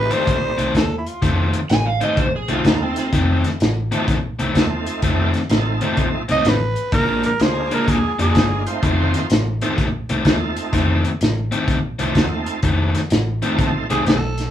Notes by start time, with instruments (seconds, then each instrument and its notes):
Already playing: tonewheel organ A3 C4 D#4 F4 G4, tenor saxophone B4
0.10 overdriven electric guitar F2 D#3 A3 C4, tenor saxophone C5, closed hi-hat
0.27 fingered electric bass A#1, kick, closed hi-hat
0.57 fingered electric bass C2, overdriven electric guitar F2 D#3 A3 C4, closed hi-hat
0.75 fingered electric bass D#2, tenor saxophone A4, kick, snare, closed hi-hat
0.98 tenor saxophone E4
1.06 tenor saxophone F4, closed hi-hat
1.22 fingered electric bass F1, overdriven electric guitar F2 D#3 A3 C4, kick, snare, closed hi-hat
1.53 closed hi-hat
1.69 fingered electric bass A1, electric slide guitar G#5, snare, closed hi-hat
1.86 electric slide guitar F5
2.01 overdriven electric guitar F2 D#3 A3 C4, electric slide guitar D#5, closed hi-hat
2.17 fingered electric bass A#1, electric slide guitar C5, kick, closed hi-hat
2.36 electric slide guitar G#4
2.48 fingered electric bass C2, overdriven electric guitar F2 D#3 A3 C4, tonewheel organ A3 C4 D#4 F4 A4, electric slide guitar F4, closed hi-hat
2.65 fingered electric bass D#2, electric slide guitar D#4, kick, snare, closed hi-hat
2.83 electric slide guitar C4
2.96 electric slide guitar C4, snare, closed hi-hat
3.12 fingered electric bass F1, overdriven electric guitar F2 D#3 A3 C4, kick, snare, closed hi-hat
3.44 snare, closed hi-hat
3.60 fingered electric bass A1, snare, closed hi-hat
3.91 overdriven electric guitar F2 D#3 A3 C4, tonewheel organ A3 C4 D#4 F4 A4, closed hi-hat
4.08 fingered electric bass A#1, kick, snare, closed hi-hat
4.39 fingered electric bass C2, overdriven electric guitar F2 D#3 A3 C4, closed hi-hat
4.55 fingered electric bass D#2, tonewheel organ A3 C4 D#4 F4 A4, kick, snare, closed hi-hat
4.86 closed hi-hat
5.02 fingered electric bass F1, overdriven electric guitar F2 D#3 A3 C4, tonewheel organ A3 C4 D#4 F4 A4, kick, closed hi-hat
5.34 snare, closed hi-hat
5.50 fingered electric bass A1, tonewheel organ A3 C4 D#4 F4 A4, snare, closed hi-hat
5.81 overdriven electric guitar F2 D#3 A3 C4, closed hi-hat
5.97 fingered electric bass A#1, kick, closed hi-hat
6.29 fingered electric bass C2, overdriven electric guitar F2 D#3 A3 C4, tenor saxophone D#5, closed hi-hat
6.45 fingered electric bass A1, snare, closed hi-hat
6.49 tenor saxophone B4
6.76 closed hi-hat
6.92 fingered electric bass A#1, overdriven electric guitar A#2 F3 G#3 D4, tenor saxophone A#4, kick, snare, closed hi-hat
7.23 tenor saxophone A#4, closed hi-hat
7.39 fingered electric bass D2, tonewheel organ G#3 A#3 D4 F4 G#4, tenor saxophone C5, snare, closed hi-hat
7.71 overdriven electric guitar A#2 F3 G#3 D4, tenor saxophone A#4, closed hi-hat
7.88 fingered electric bass D#2, tenor saxophone G#4, kick, snare, closed hi-hat
8.19 fingered electric bass F2, overdriven electric guitar A#2 F3 G#3 D4, tonewheel organ G#3 A#3 D4 F4 G#4, tenor saxophone G#4, closed hi-hat
8.35 fingered electric bass G1, kick, snare, closed hi-hat
8.66 tonewheel organ A3 C4 D#4 F4 C5, tenor saxophone F4, closed hi-hat
8.83 fingered electric bass F1, overdriven electric guitar F2 D#3 A3 C4, tenor saxophone F4, kick, closed hi-hat
9.14 snare, closed hi-hat
9.30 fingered electric bass A1, snare, closed hi-hat
9.61 overdriven electric guitar F2 D#3 A3 C4, tonewheel organ A3 C4 D#4 F4 A4, closed hi-hat
9.78 fingered electric bass A#1, kick, snare, closed hi-hat
10.09 fingered electric bass C2, overdriven electric guitar F2 D#3 A3 C4, closed hi-hat
10.25 fingered electric bass D#2, tonewheel organ A3 C4 D#4 F4 A4, kick, snare, closed hi-hat
10.56 closed hi-hat
10.72 fingered electric bass F1, overdriven electric guitar F2 D#3 A3 C4, kick, snare, closed hi-hat
11.05 closed hi-hat
11.21 fingered electric bass A1, snare, closed hi-hat
11.51 overdriven electric guitar F2 D#3 A3 C4, closed hi-hat
11.68 fingered electric bass A#1, kick, snare, closed hi-hat
11.99 fingered electric bass C2, overdriven electric guitar F2 D#3 A3 C4, tonewheel organ A3 C4 D#4 F4 A4, closed hi-hat
12.15 fingered electric bass D#2, kick, snare, closed hi-hat
12.46 closed hi-hat
12.63 fingered electric bass F1, overdriven electric guitar F2 D#3 A3 C4, kick, closed hi-hat
12.95 snare, closed hi-hat
13.10 fingered electric bass A1, snare, closed hi-hat
13.42 overdriven electric guitar F2 D#3 A3 C4, tonewheel organ A3 C4 D#4 F4 A4, closed hi-hat
13.59 fingered electric bass A#1, kick, snare, closed hi-hat
13.90 fingered electric bass C2, overdriven electric guitar F2 D#3 A3 C4, tonewheel organ A3 C4 D#4 F4 G4, tenor saxophone G#4, closed hi-hat
14.06 fingered electric bass B1, tenor saxophone A4, snare, closed hi-hat
14.38 snare, closed hi-hat